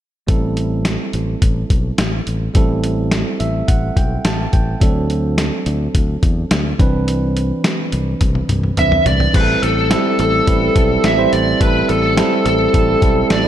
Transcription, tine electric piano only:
0.27 2.50 G3 medium
0.27 2.51 C4 medium
0.27 2.51 E4 medium
0.27 2.52 A4 medium
2.54 4.77 G3 medium
2.54 4.77 C4 medium
2.54 4.78 E4 medium
2.54 4.78 A4 medium
3.40 3.66 E5 medium
3.68 3.94 F#5 medium
3.97 4.23 G5 medium
4.25 4.51 A5 medium
4.53 4.79 G5 medium
4.80 6.75 F#3 medium
4.80 6.75 C4 medium
4.80 6.76 D4 medium
4.80 6.76 A4 medium
6.78 8.73 E3 medium
6.78 8.74 C4 medium
6.78 8.74 D4 medium
6.78 8.74 B4 medium
8.77 9.34 E3 soft
8.77 9.32 C4 soft
8.77 9.34 D4 soft
8.77 9.34 B4 medium
9.33 9.78 G3 medium
9.33 9.78 C4 medium
9.33 9.78 E4 medium
9.33 9.41 G#4 medium
9.41 9.82 A4 medium
9.90 10.35 G3 medium
9.90 10.35 C4 medium
9.90 10.35 E4 medium
9.90 10.35 A4 medium
10.47 10.69 G3 medium
10.47 10.69 C4 medium
10.47 10.70 E4 medium
10.47 10.70 B4 medium
10.75 11.08 G3 medium
10.75 11.09 C4 medium
10.75 11.09 E4 medium
10.75 11.09 A4 medium
11.18 11.51 G3 medium
11.18 11.51 C4 medium
11.18 11.51 E4 medium
11.18 11.52 C5 medium
11.60 12.05 G3 medium
11.60 12.05 C4 medium
11.60 12.05 E4 medium
11.60 12.05 A4 medium
12.17 12.61 G3 medium
12.17 12.61 C4 medium
12.17 12.61 E4 medium
12.17 12.62 A4 medium
12.73 12.96 G3 medium
12.73 12.96 C4 medium
12.73 12.96 E4 medium
12.73 12.96 A4 medium
13.01 13.35 G3 medium
13.01 13.35 C4 medium
13.01 13.35 E4 medium
13.01 13.35 A4 medium
13.44 13.48 G3 medium
13.44 13.48 C4 medium
13.44 13.48 E4 medium

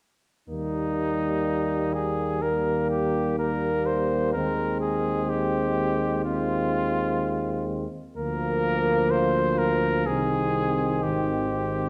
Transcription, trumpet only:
0.49 1.95 D#4 medium
1.94 2.44 G#4 soft
2.42 2.90 A#4 soft
2.90 3.38 G4 soft
3.39 3.88 A#4 soft
3.86 4.33 C5 medium
4.33 4.80 A#4 medium
4.81 5.31 G#4 soft
5.30 6.24 G4 medium
6.25 7.65 F4 medium
8.17 9.12 A#4 medium
9.11 9.60 C5 medium
9.58 10.08 A#4 medium
10.07 11.05 G#4 medium
11.03 11.89 G4 soft

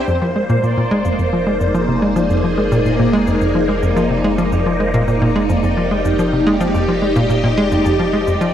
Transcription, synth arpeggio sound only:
0.08 0.19 F2 medium
0.22 0.29 F3 medium
0.36 0.40 G#3 medium
0.50 0.57 A#2 loud
0.63 0.75 A#2 medium
0.77 0.85 A#2 medium
0.91 1.03 G#3 loud
1.05 1.10 F2 medium
1.19 1.30 F2 medium
1.33 1.41 F3 medium
1.47 1.51 G#3 medium
1.61 1.68 F2 medium
1.74 1.86 F3 medium
1.88 1.96 C3 medium
2.02 2.14 G#3 loud
2.16 2.24 F3 medium
2.30 2.41 F2 medium
2.44 2.52 F3 medium
2.58 2.62 G#3 medium
2.72 2.79 A#2 loud
2.86 2.97 A#2 medium
2.99 3.07 A#2 medium
3.13 3.25 G#3 loud
3.27 3.32 F2 medium
3.41 3.53 F2 medium
3.55 3.63 F3 medium
3.69 3.74 G#3 medium
3.83 3.90 F2 medium
3.96 4.08 F3 medium
4.10 4.18 C3 medium
4.24 4.36 G#3 medium
4.38 4.46 F3 medium
4.52 4.64 F2 medium
4.66 4.74 F3 medium
4.80 4.85 G#3 medium
4.94 5.02 A#2 loud
5.08 5.19 A#2 medium
5.22 5.29 A#2 medium
5.36 5.47 G#3 loud
5.49 5.54 F2 medium
5.63 5.75 F2 medium
5.77 5.85 F3 medium
5.91 5.96 G#3 medium
6.05 6.13 F2 medium
6.19 6.30 F3 medium
6.33 6.40 C3 medium
6.47 6.58 G#3 loud
6.61 6.68 F3 medium
6.74 6.86 F2 medium
6.88 6.96 F3 medium
7.02 7.07 G#3 medium
7.16 7.24 A#2 loud
7.30 7.41 A#2 medium
7.44 7.52 A#2 loud
7.58 7.69 G#3 loud
7.72 7.76 F2 medium
7.86 7.97 F2 medium
7.99 8.07 F3 medium
8.13 8.18 G#3 medium
8.27 8.35 F2 medium
8.41 8.53 F3 medium

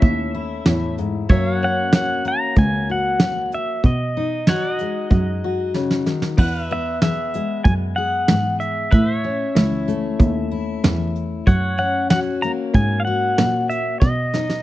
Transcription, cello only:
0.02 0.56 D#2 medium
0.66 1.20 E2 medium
1.30 2.24 F#2 medium
2.57 3.52 C#2 medium
3.84 4.79 B2 medium
5.11 6.06 F#2 medium
6.38 7.33 E2 medium
7.65 8.19 F#2 medium
8.29 8.83 G#2 medium
8.93 9.40 A2 medium
9.55 10.10 C#2 medium
10.20 10.74 D#2 medium
10.84 11.38 E2 medium
11.47 12.42 F#2 medium
12.74 13.28 G#2 loud
13.39 13.92 A#2 medium
14.02 14.62 B2 medium

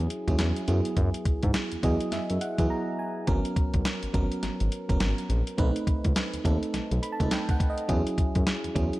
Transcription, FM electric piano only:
0.00 0.28 F#3 medium
0.00 0.28 C#4 medium
0.00 0.28 E4 medium
0.00 0.29 G#4 loud
0.28 0.66 F#3 medium
0.28 0.68 C#4 medium
0.28 0.67 E4 medium
0.28 0.68 G#4 medium
0.68 1.65 F#3 medium
0.68 1.65 B3 medium
0.68 1.65 E4 medium
0.68 1.65 G#4 medium
1.83 2.43 F#3 medium
1.83 2.43 B3 medium
1.83 2.43 E4 medium
1.83 2.44 G#4 medium
1.83 2.10 D#5 medium
2.13 2.39 E5 medium
2.41 2.68 F#5 medium
2.58 3.17 F#3 medium
2.58 3.18 B3 medium
2.58 3.18 E4 medium
2.58 3.18 G#4 medium
2.70 2.97 A#5 medium
2.99 3.26 G#5 medium
3.27 4.01 F#3 medium
3.27 4.02 B3 medium
3.27 4.02 C#4 medium
3.27 4.02 A#4 loud
4.13 4.73 F#3 medium
4.13 4.74 B3 medium
4.13 4.74 C#4 medium
4.13 4.74 A#4 medium
4.89 5.48 F#3 medium
4.89 5.48 B3 medium
4.89 5.48 C#4 medium
4.89 5.49 A#4 medium
5.58 6.32 A3 medium
5.58 6.32 C4 medium
5.58 6.33 D#4 medium
5.58 6.33 B4 loud
6.44 7.04 A3 medium
6.44 7.04 C4 medium
6.44 7.05 D#4 medium
6.44 7.05 A4 medium
7.03 7.11 B5 medium
7.12 7.30 A5 medium
7.20 7.79 A3 medium
7.20 7.79 C4 medium
7.20 7.79 D#4 medium
7.20 7.79 A4 medium
7.32 7.50 G5 medium
7.51 7.69 F#5 medium
7.70 7.88 D#5 medium
7.88 8.63 F#3 medium
7.88 8.63 C#4 medium
7.88 8.63 E4 medium
7.88 8.64 G#4 loud
8.75 9.00 F#3 medium
8.75 9.00 C#4 medium
8.75 9.00 E4 medium
8.75 9.00 G#4 medium

